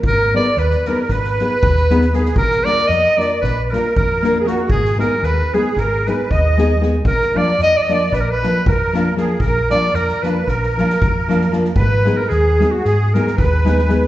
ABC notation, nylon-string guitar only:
X:1
M:9/8
L:1/8
Q:3/8=76
K:none
V:1 name="Nylon-string guitar"
z [_C_E_A_c] z [CEAc] z [CEAc] z [CEAc] [CEAc] | z [_B,DF_B] z [B,DFB] z [B,DFB] z [B,DFB] [B,DFB] | z [_A,_C_E_A] z [A,CEA] z [A,CEA] z [A,CEA] [A,CEA] | z [F,_B,DF] z [F,B,DF] z [F,B,DF] z [F,B,DF] [F,B,DF] |
z [F,_B,DF] z [F,B,DF] z [F,B,DF] z [F,B,DF] [F,B,DF] | z [_A,_C_E_A] z [A,CEA] z [A,CEA] z [A,CEA] [A,CEA] |]